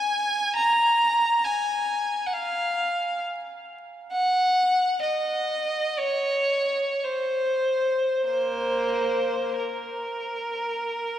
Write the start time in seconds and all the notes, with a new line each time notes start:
Already playing: G#5
0.55 A#5
1.44 G#5
2.26 F#5
2.32 F5
4.12 F#5
5.03 D#5
5.98 C#5
7.04 C5
8.28 A#3 C5
9.59 A#4